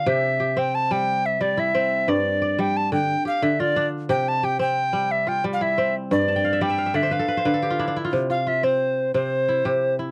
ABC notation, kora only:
X:1
M:12/8
L:1/16
Q:3/8=119
K:C
V:1 name="Kora"
G4 G6 z8 E6 | d4 d6 z4 G4 F6 | G4 G6 z4 F4 E6 | z2 a g f e d e f e d c B A B c B A G F E D E F- |
F z F2 F6 z2 C4 E2 G4 E2 |]
V:2 name="Kora" clef=bass
C,4 z2 C4 G,4 z2 G,4 C4 | G,,4 z2 G,4 D,2 z4 D,4 D4 | C,4 z2 C4 G,4 z2 G,4 C4 | G,,4 z2 G,4 D,2 z4 D,4 D4 |
C,4 z2 C4 z2 C,4 z2 C,4 z2 |]